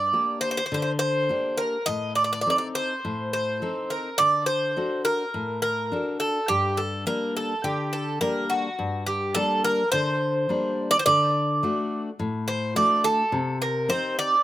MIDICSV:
0, 0, Header, 1, 3, 480
1, 0, Start_track
1, 0, Key_signature, -2, "minor"
1, 0, Tempo, 577478
1, 1564, Time_signature, 4, 2, 24, 8
1, 6357, Tempo, 567644
1, 12094, End_track
2, 0, Start_track
2, 0, Title_t, "Bouzouki"
2, 0, Program_c, 0, 25
2, 0, Note_on_c, 0, 74, 87
2, 318, Note_off_c, 0, 74, 0
2, 340, Note_on_c, 0, 72, 86
2, 413, Note_off_c, 0, 72, 0
2, 424, Note_on_c, 0, 72, 74
2, 467, Note_off_c, 0, 72, 0
2, 477, Note_on_c, 0, 72, 76
2, 537, Note_off_c, 0, 72, 0
2, 547, Note_on_c, 0, 72, 59
2, 607, Note_off_c, 0, 72, 0
2, 617, Note_on_c, 0, 72, 68
2, 674, Note_off_c, 0, 72, 0
2, 684, Note_on_c, 0, 72, 59
2, 756, Note_off_c, 0, 72, 0
2, 823, Note_on_c, 0, 72, 91
2, 1309, Note_on_c, 0, 70, 79
2, 1329, Note_off_c, 0, 72, 0
2, 1540, Note_off_c, 0, 70, 0
2, 1545, Note_on_c, 0, 75, 101
2, 1787, Note_off_c, 0, 75, 0
2, 1790, Note_on_c, 0, 74, 78
2, 1854, Note_off_c, 0, 74, 0
2, 1864, Note_on_c, 0, 74, 59
2, 1923, Note_off_c, 0, 74, 0
2, 1933, Note_on_c, 0, 74, 73
2, 1996, Note_off_c, 0, 74, 0
2, 2006, Note_on_c, 0, 74, 68
2, 2068, Note_off_c, 0, 74, 0
2, 2078, Note_on_c, 0, 74, 72
2, 2137, Note_off_c, 0, 74, 0
2, 2147, Note_on_c, 0, 74, 59
2, 2218, Note_off_c, 0, 74, 0
2, 2287, Note_on_c, 0, 72, 81
2, 2761, Note_off_c, 0, 72, 0
2, 2771, Note_on_c, 0, 72, 79
2, 3244, Note_on_c, 0, 70, 77
2, 3263, Note_off_c, 0, 72, 0
2, 3469, Note_off_c, 0, 70, 0
2, 3474, Note_on_c, 0, 74, 105
2, 3706, Note_off_c, 0, 74, 0
2, 3710, Note_on_c, 0, 72, 76
2, 4164, Note_off_c, 0, 72, 0
2, 4196, Note_on_c, 0, 70, 90
2, 4646, Note_off_c, 0, 70, 0
2, 4673, Note_on_c, 0, 70, 83
2, 5123, Note_off_c, 0, 70, 0
2, 5152, Note_on_c, 0, 69, 80
2, 5379, Note_off_c, 0, 69, 0
2, 5389, Note_on_c, 0, 67, 92
2, 5630, Note_on_c, 0, 69, 69
2, 5641, Note_off_c, 0, 67, 0
2, 5857, Note_off_c, 0, 69, 0
2, 5875, Note_on_c, 0, 70, 79
2, 6098, Note_off_c, 0, 70, 0
2, 6122, Note_on_c, 0, 69, 72
2, 6341, Note_off_c, 0, 69, 0
2, 6352, Note_on_c, 0, 67, 68
2, 6593, Note_on_c, 0, 69, 71
2, 6820, Note_off_c, 0, 69, 0
2, 6831, Note_on_c, 0, 70, 82
2, 7045, Note_off_c, 0, 67, 0
2, 7074, Note_on_c, 0, 66, 72
2, 7084, Note_off_c, 0, 70, 0
2, 7527, Note_off_c, 0, 66, 0
2, 7555, Note_on_c, 0, 67, 71
2, 7792, Note_on_c, 0, 69, 90
2, 7808, Note_off_c, 0, 67, 0
2, 8022, Note_off_c, 0, 69, 0
2, 8045, Note_on_c, 0, 70, 83
2, 8270, Note_off_c, 0, 70, 0
2, 8275, Note_on_c, 0, 72, 92
2, 9110, Note_off_c, 0, 72, 0
2, 9114, Note_on_c, 0, 74, 100
2, 9180, Note_off_c, 0, 74, 0
2, 9186, Note_on_c, 0, 72, 79
2, 9236, Note_off_c, 0, 72, 0
2, 9240, Note_on_c, 0, 74, 100
2, 10045, Note_off_c, 0, 74, 0
2, 10440, Note_on_c, 0, 72, 74
2, 10678, Note_off_c, 0, 72, 0
2, 10682, Note_on_c, 0, 74, 83
2, 10906, Note_off_c, 0, 74, 0
2, 10919, Note_on_c, 0, 69, 84
2, 11365, Note_off_c, 0, 69, 0
2, 11404, Note_on_c, 0, 70, 76
2, 11640, Note_on_c, 0, 72, 87
2, 11648, Note_off_c, 0, 70, 0
2, 11882, Note_off_c, 0, 72, 0
2, 11886, Note_on_c, 0, 74, 88
2, 12094, Note_off_c, 0, 74, 0
2, 12094, End_track
3, 0, Start_track
3, 0, Title_t, "Steel-string acoustic guitar"
3, 0, Program_c, 1, 25
3, 0, Note_on_c, 1, 43, 52
3, 99, Note_off_c, 1, 43, 0
3, 108, Note_on_c, 1, 58, 39
3, 113, Note_on_c, 1, 67, 46
3, 116, Note_on_c, 1, 62, 33
3, 499, Note_off_c, 1, 58, 0
3, 501, Note_off_c, 1, 62, 0
3, 501, Note_off_c, 1, 67, 0
3, 596, Note_on_c, 1, 50, 68
3, 1066, Note_off_c, 1, 50, 0
3, 1074, Note_on_c, 1, 58, 44
3, 1077, Note_on_c, 1, 62, 41
3, 1085, Note_on_c, 1, 67, 45
3, 1463, Note_off_c, 1, 58, 0
3, 1466, Note_off_c, 1, 62, 0
3, 1467, Note_off_c, 1, 67, 0
3, 1559, Note_on_c, 1, 45, 56
3, 2029, Note_off_c, 1, 45, 0
3, 2045, Note_on_c, 1, 60, 41
3, 2049, Note_on_c, 1, 63, 39
3, 2054, Note_on_c, 1, 69, 46
3, 2430, Note_off_c, 1, 60, 0
3, 2434, Note_off_c, 1, 63, 0
3, 2434, Note_off_c, 1, 69, 0
3, 2532, Note_on_c, 1, 45, 62
3, 2995, Note_off_c, 1, 45, 0
3, 3008, Note_on_c, 1, 60, 47
3, 3013, Note_on_c, 1, 69, 47
3, 3014, Note_on_c, 1, 63, 37
3, 3392, Note_off_c, 1, 60, 0
3, 3393, Note_off_c, 1, 63, 0
3, 3395, Note_off_c, 1, 69, 0
3, 3491, Note_on_c, 1, 50, 54
3, 3954, Note_off_c, 1, 50, 0
3, 3960, Note_on_c, 1, 62, 43
3, 3964, Note_on_c, 1, 66, 45
3, 3968, Note_on_c, 1, 69, 45
3, 4346, Note_off_c, 1, 62, 0
3, 4348, Note_off_c, 1, 66, 0
3, 4351, Note_off_c, 1, 69, 0
3, 4440, Note_on_c, 1, 45, 61
3, 4906, Note_off_c, 1, 45, 0
3, 4918, Note_on_c, 1, 62, 43
3, 4922, Note_on_c, 1, 66, 42
3, 4928, Note_on_c, 1, 69, 51
3, 5303, Note_off_c, 1, 62, 0
3, 5305, Note_off_c, 1, 66, 0
3, 5308, Note_off_c, 1, 69, 0
3, 5394, Note_on_c, 1, 43, 52
3, 5860, Note_off_c, 1, 43, 0
3, 5867, Note_on_c, 1, 55, 45
3, 5872, Note_on_c, 1, 58, 40
3, 5876, Note_on_c, 1, 62, 51
3, 6253, Note_off_c, 1, 55, 0
3, 6256, Note_off_c, 1, 58, 0
3, 6258, Note_off_c, 1, 62, 0
3, 6349, Note_on_c, 1, 50, 63
3, 6821, Note_off_c, 1, 50, 0
3, 6832, Note_on_c, 1, 55, 46
3, 6832, Note_on_c, 1, 58, 37
3, 6841, Note_on_c, 1, 62, 46
3, 7222, Note_off_c, 1, 55, 0
3, 7224, Note_off_c, 1, 58, 0
3, 7224, Note_off_c, 1, 62, 0
3, 7320, Note_on_c, 1, 43, 58
3, 7789, Note_off_c, 1, 43, 0
3, 7804, Note_on_c, 1, 55, 47
3, 7807, Note_on_c, 1, 58, 42
3, 7811, Note_on_c, 1, 62, 51
3, 8190, Note_off_c, 1, 55, 0
3, 8192, Note_off_c, 1, 58, 0
3, 8194, Note_off_c, 1, 62, 0
3, 8288, Note_on_c, 1, 50, 67
3, 8754, Note_off_c, 1, 50, 0
3, 8761, Note_on_c, 1, 55, 45
3, 8766, Note_on_c, 1, 58, 43
3, 8770, Note_on_c, 1, 62, 47
3, 9148, Note_off_c, 1, 55, 0
3, 9151, Note_off_c, 1, 62, 0
3, 9152, Note_off_c, 1, 58, 0
3, 9249, Note_on_c, 1, 50, 66
3, 9714, Note_off_c, 1, 50, 0
3, 9723, Note_on_c, 1, 57, 50
3, 9730, Note_on_c, 1, 62, 39
3, 9731, Note_on_c, 1, 66, 50
3, 10109, Note_off_c, 1, 57, 0
3, 10110, Note_off_c, 1, 62, 0
3, 10113, Note_off_c, 1, 66, 0
3, 10202, Note_on_c, 1, 45, 66
3, 10668, Note_off_c, 1, 45, 0
3, 10678, Note_on_c, 1, 57, 47
3, 10686, Note_on_c, 1, 66, 51
3, 10687, Note_on_c, 1, 62, 40
3, 11063, Note_off_c, 1, 57, 0
3, 11065, Note_off_c, 1, 62, 0
3, 11068, Note_off_c, 1, 66, 0
3, 11155, Note_on_c, 1, 48, 61
3, 11621, Note_off_c, 1, 48, 0
3, 11632, Note_on_c, 1, 60, 47
3, 11637, Note_on_c, 1, 63, 42
3, 11643, Note_on_c, 1, 67, 46
3, 12016, Note_off_c, 1, 60, 0
3, 12019, Note_off_c, 1, 63, 0
3, 12020, Note_off_c, 1, 67, 0
3, 12094, End_track
0, 0, End_of_file